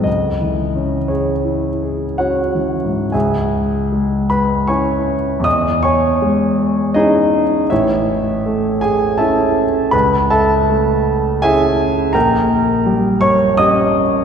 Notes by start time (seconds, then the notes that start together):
0.04 C#2 D#5
0.41 E3
0.75 C#4
1.08 G#4 C#5
1.45 E4
1.83 G#4
2.18 C#4 F#4 C#5 F#5
2.55 E3
2.85 G#2
3.12 C#2 G#4 E5 G#5
3.92 G#3
4.30 B4 B5
4.67 C#4 E4 C#5 G#5 C#6
5.40 E2
5.44 D#5 D#6
5.83 C#5 G#5 C#6
6.22 G#3
6.94 C#4 D#4 E4 G#4 D#5
7.70 A1 E4 C#5 E5
8.46 A3
8.81 G#4 G#5
9.18 C#4 E4 A4 E5 A5
9.91 C#2 B4 B5
10.30 A4 E5 A5
10.69 A3
11.42 C#4 E4 G#4 E5 G#5
12.13 A#1 A#4 G5 A#5
12.86 G3
13.21 C#5 C#6
13.57 C#4 G4 D#5 D#6